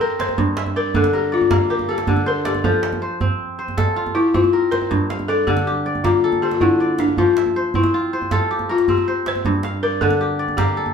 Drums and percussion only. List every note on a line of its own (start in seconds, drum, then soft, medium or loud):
0.20 djembe slap medium
0.29 djembe tone medium
0.38 djembe bass medium
0.48 djembe slap soft
0.57 djembe slap medium
0.66 djembe tone medium
0.94 djembe bass medium
1.04 djembe slap medium
1.04 djembe tone medium
1.41 djembe slap soft
1.41 djembe tone medium
1.51 djembe slap medium
1.51 djembe bass medium
1.60 djembe slap soft
1.79 djembe tone medium
1.98 djembe slap medium
2.07 djembe bass medium
2.17 djembe tone medium
2.45 djembe slap medium
2.55 djembe tone medium
2.64 djembe bass medium
2.83 djembe slap medium
2.93 djembe tone medium
3.21 djembe slap soft
3.21 djembe bass medium
3.68 djembe tone medium
3.78 djembe slap medium
3.78 djembe bass medium
4.06 djembe tone medium
4.34 djembe slap soft
4.34 djembe bass medium
4.44 djembe tone medium
4.53 djembe slap soft
4.63 djembe slap soft
4.72 djembe slap medium
4.81 djembe tone soft
4.91 djembe bass medium
5.01 djembe slap soft
5.10 djembe slap medium
5.19 djembe tone soft
5.47 djembe bass medium
5.57 djembe slap soft
5.57 djembe tone soft
5.95 djembe slap soft
5.95 djembe tone soft
6.04 djembe slap medium
6.04 djembe bass medium
6.13 djembe slap soft
6.32 djembe tone medium
6.51 djembe slap soft
6.61 djembe bass medium
6.99 djembe slap medium
7.08 djembe tone soft
7.17 djembe bass medium
7.37 djembe slap medium
7.46 djembe tone soft
7.74 djembe bass medium
7.84 djembe slap soft
7.84 djembe tone soft
8.22 djembe slap soft
8.22 djembe tone soft
8.31 djembe slap medium
8.31 djembe bass medium
8.41 djembe slap soft
8.59 djembe tone soft
8.78 djembe slap soft
8.88 djembe bass medium
8.98 djembe tone soft
9.26 djembe slap medium
9.35 djembe tone soft
9.45 djembe bass medium
9.54 djembe slap soft
9.63 djembe slap medium
10.01 djembe bass medium
10.10 djembe slap soft
10.10 djembe tone soft
10.48 djembe slap soft
10.48 djembe tone soft
10.58 djembe slap medium
10.58 djembe bass medium
10.67 djembe slap soft
10.86 djembe tone soft